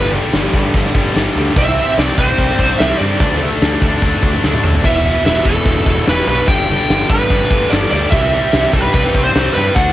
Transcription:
Already playing: picked electric bass G1, overdriven electric guitar G2 D3 G3, tonewheel organ G3 D4 A4, lead electric guitar B3
0.03 snare
0.13 overdriven electric guitar G2 D3 G3
0.32 picked electric bass G1, overdriven electric guitar G2 D3 G3, snare, open hi-hat
0.54 picked electric bass G1, overdriven electric guitar G2 D3 G3, kick
0.74 picked electric bass G1, overdriven electric guitar G2 D3 G3, kick, open hi-hat
0.85 snare
0.95 picked electric bass G1, overdriven electric guitar G2 D3 G3, kick
1.15 picked electric bass G1, overdriven electric guitar G2 D3 G3, snare, open hi-hat
1.36 picked electric bass D2, overdriven electric guitar G2 D3 G3
1.56 picked electric bass C2, overdriven electric guitar C3 G3 C4, tonewheel organ C4 G4 D5, lead electric guitar E4 E5, kick, open hi-hat
1.68 snare
1.77 overdriven electric guitar C3 G3 C4
1.98 picked electric bass C2, overdriven electric guitar C3 G3 C4, lead electric guitar D4 D5, snare, open hi-hat
2.18 picked electric bass C2, overdriven electric guitar C3 G3 C4, lead electric guitar C4 C5, kick
2.38 picked electric bass C2, overdriven electric guitar C3 G3 C4, kick, open hi-hat
2.50 snare
2.59 picked electric bass C2, overdriven electric guitar C3 G3 C4, kick
2.78 picked electric bass C2, overdriven electric guitar C3 G3 C4, lead electric guitar E4 E5, snare, open hi-hat
2.98 picked electric bass G2, overdriven electric guitar C3 G3 C4, lead electric guitar D4 D5
3.20 picked electric bass D2, overdriven electric guitar D3 A3 D4, tonewheel organ D4 A4 E5, kick, open hi-hat
3.32 snare
3.41 overdriven electric guitar D3 A3 D4
3.61 picked electric bass D2, overdriven electric guitar D3 A3 D4, snare, open hi-hat
3.82 picked electric bass D2, overdriven electric guitar D3 A3 D4, kick
4.02 picked electric bass D2, overdriven electric guitar D3 A3 D4, kick, open hi-hat
4.14 snare
4.23 picked electric bass D2, overdriven electric guitar D3 A3 D4, kick
4.44 picked electric bass D2, overdriven electric guitar D3 A3 D4, snare
4.54 high tom
4.64 picked electric bass D2, overdriven electric guitar D3 A3 D4, mid tom
4.74 floor tom
4.82 picked electric bass E1, overdriven electric guitar E2 B2 E3, tonewheel organ E4 B4 F#5, lead electric guitar E5, kick, open hi-hat, crash
4.87 lead electric guitar E4
5.04 overdriven electric guitar E2 B2 E3
5.25 picked electric bass E1, overdriven electric guitar E2 B2 E3, lead electric guitar E4 E5, snare, open hi-hat
5.45 picked electric bass E1, overdriven electric guitar E2 B2 E3, lead electric guitar A3 A4, kick
5.65 picked electric bass E1, overdriven electric guitar E2 B2 E3, kick, open hi-hat
5.77 snare
5.86 picked electric bass E1, overdriven electric guitar E2 B2 E3, kick
6.07 picked electric bass E1, overdriven electric guitar E2 B2 E3, lead electric guitar B3 B4, snare, open hi-hat
6.27 picked electric bass B1, overdriven electric guitar E2 B2 E3, lead electric guitar B3 B4
6.48 picked electric bass G1, overdriven electric guitar G2 D3 G3, tonewheel organ G3 D4 A4, lead electric guitar G4 G5, kick, open hi-hat
6.59 snare
6.68 overdriven electric guitar G2 D3 G3
6.89 picked electric bass G1, overdriven electric guitar G2 D3 G3, snare, open hi-hat
7.10 picked electric bass G1, overdriven electric guitar G2 D3 G3, lead electric guitar B3 B4, kick
7.30 picked electric bass G1, overdriven electric guitar G2 D3 G3, kick, open hi-hat
7.42 snare
7.51 picked electric bass G1, overdriven electric guitar G2 D3 G3, kick
7.70 picked electric bass G1, overdriven electric guitar G2 D3 G3, lead electric guitar D4 D5, snare, open hi-hat
7.91 picked electric bass D2, overdriven electric guitar G2 D3 G3, lead electric guitar D4 D5
8.11 picked electric bass C2, overdriven electric guitar C3 G3 C4, lead electric guitar E4 E5, tonewheel organ E4 G4 D5, kick, open hi-hat
8.23 snare
8.32 overdriven electric guitar C3 G3 C4
8.52 picked electric bass C2, overdriven electric guitar C3 G3 C4, snare, open hi-hat
8.73 picked electric bass C2, overdriven electric guitar C3 G3 C4, lead electric guitar A3 A4, kick
8.82 lead electric guitar B3 B4
8.92 picked electric bass C2, overdriven electric guitar C3 G3 C4, lead electric guitar B3 B4, kick, open hi-hat
9.06 snare
9.14 picked electric bass C2, overdriven electric guitar C3 G3 C4, kick
9.24 lead electric guitar C4 C5
9.35 picked electric bass C2, overdriven electric guitar C3 G3 C4, snare, open hi-hat
9.53 picked electric bass G2, overdriven electric guitar C3 G3 C4, lead electric guitar B3 B4
9.75 picked electric bass D2, overdriven electric guitar D3 A3 D4, tonewheel organ D4 A4 E5, lead electric guitar F#4 F#5, kick, open hi-hat
9.88 snare

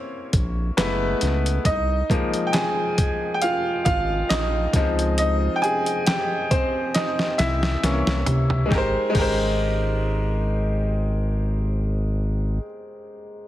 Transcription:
Already playing: upright piano A#3 C4 C#4 E4 C5 C#5
0.33 analog synth bass A#1, kick, closed hi-hat
0.77 analog synth bass F#1, upright piano G#3 A3 B3 E4 B4, snare, clap, closed hi-hat
1.21 analog synth bass C#2, snare, closed hi-hat
1.46 closed hi-hat
1.65 analog synth bass C2, upright piano D#4 D#5, kick, closed hi-hat
2.10 upright piano F3 G#3 A#3 D#4, kick, closed hi-hat
2.34 closed hi-hat
2.47 upright piano G5
2.53 upright piano G#4 G#5, snare, clap, closed hi-hat
2.98 kick, closed hi-hat
3.34 upright piano G5
3.42 upright piano F4 F5, closed hi-hat
3.85 analog synth bass G#1, upright piano F4 F5, kick, closed hi-hat
4.29 analog synth bass A#1, upright piano D#4 D#5, snare, clap, closed hi-hat
4.73 analog synth bass C#2, upright piano F3 G#3 C4 D#4, kick, snare, closed hi-hat
4.99 closed hi-hat
5.18 upright piano D#4 D#5, closed hi-hat
5.56 upright piano G5
5.62 upright piano G#4 G#5, closed hi-hat
5.86 closed hi-hat
6.07 upright piano G4 G5, snare, clap, closed hi-hat
6.51 upright piano C4 C5, kick, closed hi-hat
6.94 upright piano D#4 D#5, snare, closed hi-hat
7.19 snare
7.38 analog synth bass C2, upright piano E4 E5, snare, closed hi-hat
7.63 snare
7.83 analog synth bass C2, upright piano E3 A#3 C#4, snare, closed hi-hat
8.07 analog synth bass C2, snare
8.26 analog synth bass C3, closed hi-hat, floor tom
8.50 floor tom
8.66 upright piano G#3 D#4
8.71 analog synth bass G#1, upright piano G4, kick, snare
8.75 upright piano A#4 C5
9.10 upright piano G#3 D#4
9.15 analog synth bass G#1, upright piano G4 A#4, kick, crash
9.22 upright piano C5

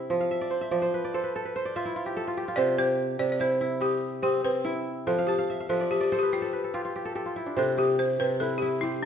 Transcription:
Already playing: kora C3 C4 E4 G4
0.10 kora F3
0.21 kora F5
0.31 kora E5
0.41 kora D5
0.50 kora C5
0.61 kora E5
0.71 kora F3 D5
0.82 kora C5
0.94 kora B4
1.04 kora D5
1.14 kora A4 C5
1.24 kora B4
1.36 kora A4
1.45 kora B4
1.56 kora C5
1.65 kora D5
1.76 kora F4 E5
1.85 kora E4
1.96 kora F4
2.06 kora G4
2.17 kora A4
2.28 kora F4
2.37 kora G4
2.48 kora F4
2.56 kora C3 C5, balafon D5
2.78 kora G4, balafon C5
3.19 kora C3, balafon D5
3.32 balafon D5
3.40 kora E4, balafon C5
3.61 kora E4
3.81 kora G4, balafon G4
4.22 kora C4, balafon G4
4.44 kora C4, balafon B4
4.65 kora E4
5.07 kora F3 G5, balafon A4
5.19 kora F5
5.27 balafon G4, kora A5
5.38 kora F5
5.50 kora E5
5.60 kora F5
5.69 kora F3 E5, balafon A4
5.80 kora D5
5.91 balafon G4, kora E5
6.01 balafon G4, kora D5
6.12 kora A4 C5
6.19 balafon G4, kora B4
6.32 balafon F4, kora G4
6.42 kora A4
6.53 kora B4
6.64 kora A4
6.74 kora F4 G4
6.85 kora F4
6.96 kora G4
7.05 kora A4
7.15 kora G4 A4
7.26 kora F4
7.36 kora E4
7.46 kora D4
7.57 kora C3 C5, balafon A4
7.78 kora G4, balafon G4
7.99 balafon C5
8.20 kora C3, balafon B4
8.40 kora E4, balafon A4
8.58 balafon G4
8.62 kora E4
8.81 balafon E4, kora G4

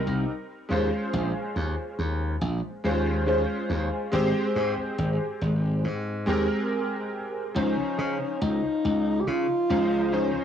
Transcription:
Already playing: electric grand piano G3 C4 D#4 A#4
0.07 slap bass C2
0.69 slap bass D#2, electric grand piano G#3 C#4 F4 C5
1.13 slap bass A#1
1.56 slap bass D#2
1.99 slap bass D#2
2.41 slap bass A#1
2.84 slap bass D#2, electric grand piano G#3 C#4 F4 C5
3.26 electric grand piano G#3 C#4 F4 C5
3.70 slap bass D#2
4.12 slap bass G#1, electric grand piano G#3 C4 G4 C5
4.56 slap bass G#2
4.78 muted slap bass stroke
4.98 slap bass G#1
5.41 slap bass G#1
5.84 slap bass G#2
6.26 slap bass D#2, electric grand piano G#3 C4 G4 A#4
7.55 slap bass C#2, electric grand piano F3 C#4 D#4 C5, tenor saxophone C#4
7.99 slap bass C#3
8.41 slap bass C#2, tenor saxophone D#4
8.85 slap bass C#2
9.20 tenor saxophone G4
9.27 slap bass C#3, tenor saxophone F4
9.70 slap bass C#2, electric grand piano F3 C#4 D#4 C5
10.12 electric grand piano F3 C#4 D#4 C5, tenor saxophone C#4

